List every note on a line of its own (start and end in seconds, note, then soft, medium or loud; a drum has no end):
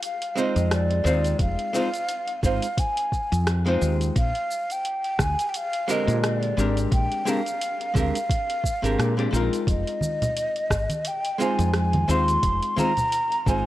0.03 0.40 F5 medium
0.03 open hi-hat medium
0.03 shaker soft
0.22 open hi-hat soft
0.35 1.01 G#3 loud
0.35 1.02 C4 medium
0.35 1.02 D#4 medium
0.35 1.02 F4 medium
0.35 1.03 C5 loud
0.35 0.75 D#5 medium
0.35 shaker medium
0.56 1.00 F2 medium
0.56 open hi-hat soft
0.56 shaker soft
0.71 1.41 D5 medium
0.71 cross-stick medium
0.71 open hi-hat medium
0.71 shaker soft
0.91 open hi-hat soft
1.04 1.33 D#2 loud
1.04 1.70 G#3 medium
1.04 1.70 C4 medium
1.04 1.71 D#4 medium
1.04 1.71 F4 medium
1.04 1.72 C5 medium
1.04 shaker medium
1.25 open hi-hat soft
1.25 shaker soft
1.39 1.54 F1 medium
1.39 2.40 F5 loud
1.39 kick loud
1.39 open hi-hat medium
1.39 shaker soft
1.59 open hi-hat soft
1.73 1.87 G#3 medium
1.73 1.88 C4 medium
1.73 1.88 D#4 medium
1.73 1.88 F4 medium
1.73 1.89 C5 loud
1.73 shaker medium
1.93 open hi-hat soft
1.93 shaker soft
2.08 open hi-hat medium
2.08 shaker soft
2.27 open hi-hat soft
2.43 2.58 G#1 medium
2.43 2.64 G#3 medium
2.43 2.64 C4 medium
2.43 2.65 D#4 medium
2.43 2.65 F4 medium
2.43 2.66 C5 medium
2.43 2.81 F5 loud
2.43 kick loud
2.43 shaker medium
2.62 open hi-hat soft
2.62 shaker soft
2.78 3.48 G#5 loud
2.78 kick loud
2.78 open hi-hat medium
2.78 shaker soft
2.97 open hi-hat soft
3.12 kick medium
3.12 shaker medium
3.32 3.76 F2 medium
3.32 open hi-hat soft
3.32 shaker soft
3.47 cross-stick medium
3.47 open hi-hat medium
3.47 shaker soft
3.66 4.14 G#3 medium
3.66 4.14 C4 medium
3.66 4.14 D#4 medium
3.66 4.15 F4 medium
3.66 4.15 C5 loud
3.66 open hi-hat soft
3.81 4.09 D#2 loud
3.81 shaker medium
4.01 open hi-hat soft
4.01 shaker soft
4.16 4.31 A#1 loud
4.16 4.74 F5 loud
4.16 kick loud
4.16 open hi-hat medium
4.16 shaker soft
4.35 open hi-hat soft
4.51 shaker medium
4.70 5.24 G5 loud
4.70 open hi-hat soft
4.70 shaker medium
4.85 open hi-hat medium
4.85 shaker soft
5.04 open hi-hat soft
5.19 5.34 D2 medium
5.19 5.51 G#5 loud
5.19 kick loud
5.19 cross-stick medium
5.19 shaker medium
5.39 open hi-hat soft
5.39 shaker soft
5.49 5.58 G5 medium
5.54 5.93 F5 loud
5.54 open hi-hat medium
5.54 shaker soft
5.73 open hi-hat soft
5.88 6.54 D3 medium
5.88 6.53 G#3 loud
5.88 6.54 C4 medium
5.88 6.54 G4 medium
5.88 6.55 A#4 loud
5.88 6.26 D#5 medium
5.88 shaker medium
6.07 6.51 A#2 medium
6.07 open hi-hat soft
6.07 shaker soft
6.24 6.37 D#5 medium
6.24 cross-stick medium
6.24 open hi-hat medium
6.24 shaker soft
6.37 6.78 D5 medium
6.43 open hi-hat soft
6.57 6.85 G#1 loud
6.57 7.22 G#3 medium
6.57 7.23 C4 medium
6.57 7.23 D4 medium
6.57 7.23 G4 medium
6.57 7.24 A#4 medium
6.57 shaker medium
6.77 open hi-hat soft
6.77 shaker soft
6.91 7.07 A#1 medium
6.91 7.31 G5 loud
6.91 kick loud
6.91 open hi-hat medium
6.91 shaker soft
7.12 open hi-hat soft
7.25 7.39 G#3 loud
7.25 7.39 C4 medium
7.25 7.40 D4 medium
7.25 7.40 G4 medium
7.25 7.41 A#4 loud
7.25 shaker medium
7.30 7.97 F5 loud
7.46 open hi-hat soft
7.46 shaker soft
7.61 open hi-hat medium
7.61 shaker soft
7.81 open hi-hat soft
7.94 8.10 D2 medium
7.94 8.15 G#3 medium
7.94 8.16 C4 medium
7.94 8.16 D4 medium
7.94 8.17 G4 medium
7.94 8.17 A#4 medium
7.94 kick loud
7.94 shaker medium
7.98 9.31 F5 loud
8.15 open hi-hat soft
8.15 shaker soft
8.29 kick loud
8.29 open hi-hat medium
8.29 shaker soft
8.50 open hi-hat soft
8.64 kick medium
8.64 shaker medium
8.82 8.95 G#1 medium
8.82 9.13 G#3 medium
8.82 9.13 C4 medium
8.82 9.13 D4 medium
8.82 9.14 G4 medium
8.82 9.14 A#4 loud
8.82 open hi-hat soft
8.82 shaker soft
8.98 9.26 A#2 medium
8.98 cross-stick medium
8.98 open hi-hat medium
8.98 shaker soft
9.17 9.28 G#3 medium
9.17 9.28 C4 medium
9.17 9.28 D4 medium
9.17 9.29 G4 medium
9.17 9.29 D5 medium
9.17 open hi-hat soft
9.31 9.48 A#1 loud
9.31 11.35 G#3 medium
9.31 11.36 C4 medium
9.31 11.36 D#4 medium
9.31 shaker medium
9.35 11.37 F4 medium
9.35 11.38 A#4 medium
9.53 open hi-hat soft
9.53 shaker soft
9.67 9.82 F1 medium
9.67 11.09 D#5 loud
9.67 kick loud
9.67 open hi-hat medium
9.67 shaker soft
9.87 open hi-hat soft
10.01 high conga medium
10.01 shaker medium
10.22 open hi-hat soft
10.22 low conga medium
10.22 shaker soft
10.37 open hi-hat medium
10.37 shaker soft
10.56 open hi-hat soft
10.70 10.86 G#1 medium
10.70 kick loud
10.70 cross-stick medium
10.70 shaker medium
10.90 open hi-hat soft
10.90 high conga medium
10.90 shaker soft
11.05 11.44 G5 loud
11.05 open hi-hat medium
11.05 shaker soft
11.25 open hi-hat soft
11.38 12.04 G#3 loud
11.38 12.05 C4 medium
11.38 12.05 D#4 medium
11.38 12.05 F4 loud
11.38 12.06 C5 loud
11.38 11.76 G#5 medium
11.38 shaker medium
11.59 12.03 F2 medium
11.59 open hi-hat soft
11.59 shaker soft
11.74 12.12 G#5 loud
11.74 cross-stick medium
11.74 open hi-hat medium
11.74 shaker soft
11.93 open hi-hat soft
11.93 high conga medium
12.08 12.36 D#2 loud
12.08 12.74 G#3 medium
12.08 12.74 C4 medium
12.08 12.74 D#4 medium
12.08 12.75 F4 medium
12.08 12.75 C5 loud
12.08 12.78 C6 loud
12.08 shaker medium
12.28 open hi-hat soft
12.28 shaker soft
12.43 12.58 F1 medium
12.43 kick loud
12.43 open hi-hat medium
12.43 shaker soft
12.63 open hi-hat soft
12.76 12.91 G#3 loud
12.76 12.91 C4 medium
12.76 12.91 D#4 medium
12.76 12.92 F4 medium
12.76 12.92 C5 loud
12.76 13.50 A#5 loud
12.76 high conga medium
12.76 shaker medium
12.97 open hi-hat soft
12.97 low conga medium
12.97 shaker soft
13.12 open hi-hat medium
13.12 shaker soft
13.32 open hi-hat soft
13.46 13.61 G#1 medium
13.46 13.66 G#3 medium
13.46 13.66 C4 medium
13.46 13.66 D#4 medium
13.46 13.66 F4 medium
13.46 13.66 C5 loud
13.46 13.66 G#5 loud
13.46 kick loud
13.46 shaker medium